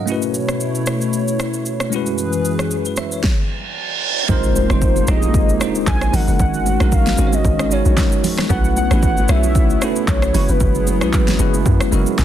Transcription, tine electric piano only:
Already playing: D#5
0.06 A3 C#4 E4
0.10 F#4 B4
1.90 G#3 C#4 E4
1.95 F#4 B4
2.86 B4
2.98 E5
3.13 C#5
4.28 G#3 C4 D#4 F4 A#4
4.69 G#3 C4 D#4 F4 C5
5.07 G#3 C4 D#4 F4 G4
5.16 G#4
5.60 G#3 C4 D4 F4 C5
5.67 D#4
6.13 G#3 C#4 D#4 F#4 A#4
6.80 G#3 C#4 D#4 F#4 A#4
7.18 G#3 C#4 D#4 F#4 C5
7.27 C#5
7.70 G#3 C#4 D#4 F#4 C#5
8.49 A3 C#4 E4 F#4 B4
8.90 A3 C#4 E4 F#4 B4
9.28 A3 C#4 D#4 F#4 C#5
9.36 E4
9.81 A3 C#4 E4 F#4 A4
10.34 G#3 C#4 E4 F#4 B4
11.01 G#3 C#4 E4 F#4 B4
11.39 G#3 C#4 E4 F#4 B4
11.92 G#3 C#4 E4 F#4 A#4 E5
12.19 G#5

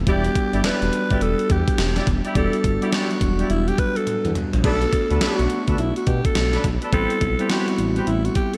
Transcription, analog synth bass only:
0.07 E1
0.53 G1
0.64 E1
0.82 E1
1.11 G1
1.21 E1
1.50 E2
1.78 E1
2.07 E1
2.35 E1
2.64 G1
3.21 E1
3.50 E1
4.25 E2
4.53 A#1
4.64 B1
5.11 D2
5.21 B1
5.39 B1
5.68 D2
5.78 B1
6.07 B2
6.35 B1
6.64 B1
6.93 A1
7.21 B1
7.78 A1
8.07 A1

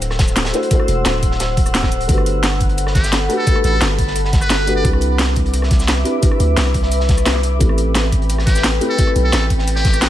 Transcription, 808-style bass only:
Already playing: D1
0.88 E1
1.05 D1
2.09 G1
3.64 A1
3.81 G1
4.85 C2
6.40 D2
6.57 C2
7.61 A1
9.16 B1
9.33 A1

